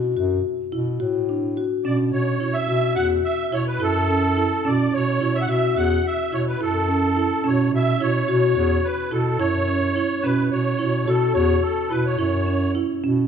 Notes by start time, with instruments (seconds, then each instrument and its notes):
Already playing: bass clarinet B2
0.17 bass clarinet F#2, marimba F#4
0.72 bass clarinet B2, marimba E4
1.00 bass clarinet A2, marimba F#4
1.29 marimba D4
1.57 marimba F#4
1.85 bass clarinet B2, marimba C#4, accordion D5
2.13 bass clarinet B2, accordion C#5
2.40 bass clarinet B2, marimba E4
2.53 accordion E5
2.69 bass clarinet B2, marimba F#4
2.95 bass clarinet E2, marimba F#4, accordion F#5
3.24 accordion E5
3.52 bass clarinet B2, marimba E4, accordion C#5
3.68 accordion B4
3.80 bass clarinet F#2, marimba E4, accordion A4
4.09 marimba C#4
4.37 marimba E4
4.65 bass clarinet B2, marimba C#4, accordion D5
4.93 bass clarinet B2, accordion C#5
5.21 bass clarinet B2, marimba E4
5.35 accordion E5
5.41 accordion F#5
5.49 bass clarinet B2, marimba F#4, accordion E5
5.76 bass clarinet E2, marimba F#4, accordion F#5
6.06 accordion E5
6.32 bass clarinet B2, marimba E4, accordion C#5
6.48 accordion B4
6.61 bass clarinet F#2, marimba E4, accordion A4
6.89 marimba C#4
7.16 marimba E4
7.44 bass clarinet B2, marimba C#4, accordion C#5
7.73 bass clarinet B2, accordion E5
8.01 bass clarinet B2, marimba E4, accordion C#5
8.28 bass clarinet B2, marimba F#4
8.55 bass clarinet E2, marimba F#4
8.84 accordion B4
9.11 bass clarinet B2, marimba E4, accordion A4
9.39 bass clarinet F#2, marimba E4, accordion C#5
9.68 marimba C#4
9.96 marimba E4
10.22 bass clarinet B2, marimba C#4, accordion B4
10.51 bass clarinet B2, accordion C#5
10.79 bass clarinet B2, marimba E4
11.06 bass clarinet B2, marimba F#4, accordion A4
11.34 bass clarinet E2, marimba F#4, accordion C#5
11.62 accordion A4
11.90 bass clarinet B2, marimba E4, accordion B4
12.06 accordion C#5
12.19 bass clarinet F#2, marimba E4
12.46 marimba C#4
12.75 marimba E4
13.04 bass clarinet B2, marimba C#4